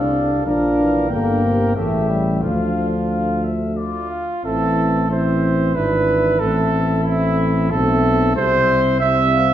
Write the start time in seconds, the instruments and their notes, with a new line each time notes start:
Already playing: bass trombone C2, trombone D3, flugelhorn A4, trumpet F5
0.00 french horn D4
0.45 bass trombone A#1, trombone F3, french horn D4, flugelhorn A#4, trumpet F5
0.79 trombone E3
1.10 bass trombone G1, trombone D3, french horn A#3, flugelhorn A#4, trumpet G5
1.44 trombone C3
1.75 bass trombone A1, trombone C#3, french horn A3, flugelhorn G4, trumpet E5
2.09 french horn G3
2.41 bass trombone D2, trombone D3, french horn F3, flugelhorn F4, trumpet F5
3.10 trumpet F5
3.44 trumpet E5
3.77 flugelhorn F4, trumpet D5
4.10 trumpet F5
4.44 bass trombone A1, trombone E3, french horn C4, flugelhorn A4, trumpet E5
5.09 trombone E3, french horn C4, flugelhorn C5, trumpet E5
5.75 bass trombone G#1, trombone E3, french horn D4, flugelhorn B4, trumpet E5
6.39 bass trombone A1, trombone A3, french horn C4, flugelhorn A4, trumpet E5
7.04 trombone A3, french horn C4, flugelhorn E4, trumpet E5
7.71 bass trombone B1, trombone A3, french horn C4, flugelhorn A4, trumpet E5
8.36 bass trombone C2, trombone G3, french horn C4, flugelhorn C5, trumpet E5
9.00 trombone G3, french horn C4, flugelhorn E5, trumpet E5
9.34 trumpet F5